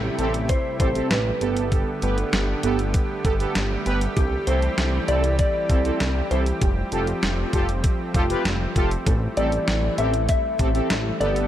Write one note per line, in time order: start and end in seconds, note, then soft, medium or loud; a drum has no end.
0.00 1.39 C3 medium
0.00 11.17 G3 medium
0.00 1.39 A3 medium
0.00 1.39 E4 medium
0.00 0.15 G4 loud
0.00 11.47 G4 medium
0.19 0.51 A1 loud
0.19 0.33 C4 medium
0.19 0.33 G4 medium
0.19 0.33 A4 loud
0.19 closed hi-hat medium
0.34 closed hi-hat medium
0.49 0.79 C5 loud
0.49 kick medium
0.49 closed hi-hat medium
0.80 1.01 A1 medium
0.80 0.89 C4 medium
0.80 0.89 G4 medium
0.80 0.89 A4 medium
0.80 1.09 C5 loud
0.80 kick medium
0.80 closed hi-hat medium
0.95 1.09 C4 medium
0.95 1.09 G4 medium
0.95 1.09 A4 medium
0.95 closed hi-hat medium
1.11 1.32 A1 loud
1.11 1.68 B4 loud
1.11 snare loud
1.11 closed hi-hat medium
1.41 1.84 G1 medium
1.41 4.14 D3 medium
1.41 6.58 A3 medium
1.41 4.14 B3 medium
1.41 1.90 B3 medium
1.41 1.90 G4 medium
1.41 1.90 A4 medium
1.41 closed hi-hat medium
1.57 closed hi-hat medium
1.72 2.90 A4 medium
1.72 kick loud
1.72 closed hi-hat medium
2.02 2.24 G1 medium
2.02 2.16 B3 medium
2.02 2.16 G4 medium
2.02 2.16 B4 medium
2.02 closed hi-hat medium
2.18 closed hi-hat soft
2.33 2.54 G1 loud
2.33 snare loud
2.33 closed hi-hat medium
2.63 2.96 G1 loud
2.63 2.78 B3 medium
2.63 2.78 G4 medium
2.63 2.78 A4 loud
2.63 closed hi-hat medium
2.79 closed hi-hat medium
2.94 kick medium
2.94 closed hi-hat medium
3.24 3.46 G1 loud
3.24 3.34 B3 medium
3.24 3.34 G4 medium
3.24 3.34 A4 loud
3.24 kick medium
3.24 closed hi-hat medium
3.40 3.54 B3 medium
3.40 3.54 G4 medium
3.40 3.54 A4 medium
3.40 closed hi-hat soft
3.55 3.77 G1 loud
3.55 snare loud
3.55 closed hi-hat medium
3.86 4.08 G1 loud
3.86 4.00 B3 medium
3.86 4.00 G4 medium
3.86 4.00 B4 loud
3.86 closed hi-hat medium
4.01 closed hi-hat medium
4.17 4.38 C2 loud
4.17 6.59 E3 medium
4.17 11.17 C4 medium
4.17 4.48 G4 loud
4.17 kick loud
4.17 closed hi-hat medium
4.47 4.69 C2 loud
4.47 4.61 C4 medium
4.47 4.61 E4 medium
4.47 4.61 A4 medium
4.47 5.08 C5 loud
4.47 closed hi-hat medium
4.62 closed hi-hat soft
4.78 4.99 C2 loud
4.78 snare loud
4.78 closed hi-hat medium
5.08 5.41 C2 loud
5.08 5.22 C4 medium
5.08 5.22 E4 medium
5.08 5.22 A4 medium
5.08 5.38 D5 loud
5.08 closed hi-hat medium
5.24 closed hi-hat medium
5.39 6.27 D5 loud
5.39 kick medium
5.39 closed hi-hat medium
5.69 5.91 C2 medium
5.69 5.79 C4 medium
5.69 5.79 E4 medium
5.69 5.79 A4 medium
5.69 kick medium
5.69 closed hi-hat medium
5.85 5.99 C4 medium
5.85 5.99 E4 medium
5.85 5.99 A4 medium
5.85 closed hi-hat medium
6.00 6.22 C2 loud
6.00 snare loud
6.00 closed hi-hat medium
6.31 6.52 C2 loud
6.31 6.45 C4 medium
6.31 6.45 E4 medium
6.31 6.45 A4 medium
6.31 6.39 C5 medium
6.31 closed hi-hat medium
6.46 closed hi-hat medium
6.61 6.83 F1 loud
6.61 9.04 F3 medium
6.61 11.47 A3 medium
6.61 7.50 G4 medium
6.61 kick loud
6.61 closed hi-hat medium
6.92 7.14 F1 loud
6.92 7.06 F4 medium
6.92 7.06 G4 medium
6.92 7.06 A4 medium
6.92 closed hi-hat medium
7.07 closed hi-hat soft
7.23 7.44 F1 loud
7.23 snare loud
7.23 closed hi-hat medium
7.53 7.86 F1 loud
7.53 7.67 F4 medium
7.53 7.67 G4 medium
7.53 7.67 A4 loud
7.53 kick medium
7.53 closed hi-hat medium
7.69 closed hi-hat medium
7.84 kick medium
7.84 closed hi-hat medium
8.14 8.36 F1 medium
8.14 8.24 F4 medium
8.14 8.24 G4 medium
8.14 8.24 A4 loud
8.14 kick medium
8.14 closed hi-hat medium
8.30 8.44 F4 medium
8.30 8.44 G4 medium
8.30 8.44 B4 medium
8.30 closed hi-hat medium
8.45 8.67 F1 loud
8.45 snare loud
8.45 closed hi-hat medium
8.76 8.97 F1 loud
8.76 8.90 F4 medium
8.76 8.90 G4 medium
8.76 8.90 A4 loud
8.76 kick medium
8.76 closed hi-hat medium
8.91 closed hi-hat medium
9.06 9.28 A1 loud
9.06 11.19 E3 medium
9.06 9.15 A4 medium
9.06 kick loud
9.06 closed hi-hat medium
9.37 9.59 A1 loud
9.37 9.51 C4 medium
9.37 9.51 G4 medium
9.37 9.51 A4 medium
9.37 9.98 D5 loud
9.37 closed hi-hat medium
9.52 closed hi-hat soft
9.68 9.89 A1 loud
9.68 snare loud
9.68 closed hi-hat medium
9.98 10.30 A1 loud
9.98 10.12 C4 medium
9.98 10.12 G4 medium
9.98 10.12 A4 medium
9.98 10.28 E5 loud
9.98 closed hi-hat medium
10.14 closed hi-hat medium
10.29 11.20 E5 loud
10.29 kick medium
10.29 closed hi-hat medium
10.59 10.81 A1 loud
10.59 10.68 C4 medium
10.59 10.68 G4 medium
10.59 10.68 A4 medium
10.59 kick medium
10.59 closed hi-hat medium
10.75 10.89 C4 medium
10.75 10.89 G4 medium
10.75 10.89 A4 medium
10.75 closed hi-hat medium
10.90 11.12 A1 loud
10.90 snare loud
10.90 closed hi-hat medium
11.20 11.47 G1 loud
11.20 11.47 D3 medium
11.20 11.47 G3 medium
11.20 11.47 B3 medium
11.20 11.47 G4 medium
11.20 11.47 A4 medium
11.20 11.47 D5 medium
11.20 closed hi-hat medium
11.36 closed hi-hat medium